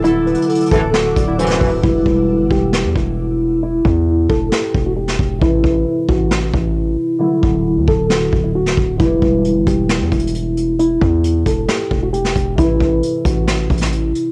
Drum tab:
HH |x-----------x---x---x---x--x--x--x--x-----------------------x-----------x---x---x---o-----------|------------------------------------------------------------------------------------------------|------------------------------------------------------------------------------------------------|------------------------------------------------------------------------------------------------|
SD |------------------------------------------------o-----------------------------o-----------------|------------------------------------------------o-----------------------------------------------|------------------------------------------------o-----------------------------o-----------------|------------------------------------------------o-----------------------------------------------|
BD |------------------------------------o-----------------------o-----------------------o-----------|o-----------o-----------------------o-----------------------o-----------------------------------|------------o-----------------------o-----------------------o-----------------------o-----------|o-----------o-----------------------o-----------------------o-----------------------------------|

HH |------------------------------------------------------------------------------------------------|x-----------------------x-----------x-----------x-----------x---x---x---x-----------x-----------|x-----------------------x-----------x-----------x-----------------------x-----------x-----------|x-----------------------x-----------x-----------x-----------x---x---x---x-----------x-----------|
SD |------------------------------------------------o-----------------------------o-----------------|------------------------------------------------o-----------------------------------------------|------------------------------------------------o-----------------------------o-----------------|------------------------------------------------o-----------------o-----------------------------|
BD |------------o-----------------------o-----------------------o-----------------------o-----------|o-----------o-----------------------o-----------------------o-----------------------------------|------------o-----------------------o-----------------------o-----------------------o-----------|o-----------o-----------------------o-----------------------o-----------------------------------|